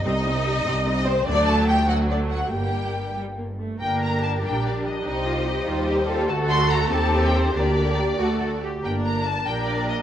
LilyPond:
<<
  \new Staff \with { instrumentName = "Violin section" } { \time 6/8 \key g \minor \tempo 4. = 96 ees'2~ ees'8 c'8 | d'8 a'8 g'8 fis'8 d'8 fis'8 | g'4. r4. | g''8 bes''8 a''8 g''8 d''8 ees''8 |
ees''2~ ees''8 r8 | a''8 c'''8 bes''8 a''8. g''16 c''8 | d''2~ d''8 r8 | g''8 bes''8 a''8 g''8 d''8 ees''8 | }
  \new Staff \with { instrumentName = "Violin section" } { \time 6/8 \key g \minor << { ees''2~ ees''8 c''8 | d''8 a''8 g''8 fis''8 d''8 fis''8 | g''4. r4. | bes'2. |
c''2. | a'4. g'4. | bes'4. fis'4 r8 | bes'4. bes'4. | } \\ { r2. | r2. | r2. | g'2. |
g'4. g'4. | fis'4. ees'4. | g'4. a'4 r8 | bes'4. g'4. | } >> }
  \new Staff \with { instrumentName = "Cello section" } { \time 6/8 \key g \minor c,4. c,4. | d,2. | g,2~ g,8 r8 | bes'4. d'4. |
ees'4. f'8 g'8 a'8~ | a'2. | d'4. fis'8 a'8 g'8 | r4. bes'4. | }
  \new Staff \with { instrumentName = "Viola section" } { \time 6/8 \key g \minor << { c'8 c'8 c'8 c'8 c'8 c'8 | a4. a4. | bes4. g8 bes8 a8 | d'4. d'4. |
ees'8 f'8 g'8 ees'8 ees'8 f'8 | fis'4. g'4. | g'4. fis'4 r8 | d'4. d'4. | } \\ { g8 g8 g8 g8 g8 g8 | fis4. fis4. | g4. r4. | bes4. g4.~ |
g4. g4. | a4. c'4. | bes4. a4 r8 | bes4. bes4. | } >> }
  \new Staff \with { instrumentName = "Double bass section" } { \clef bass \time 6/8 \key g \minor c,4. c,4. | d,2. | g,,2~ g,,8 r8 | g,,4. bes,,4. |
c,4. ees,4. | d,4. ees,4. | d,4. d,4. | g,,4. bes,,4. | }
>>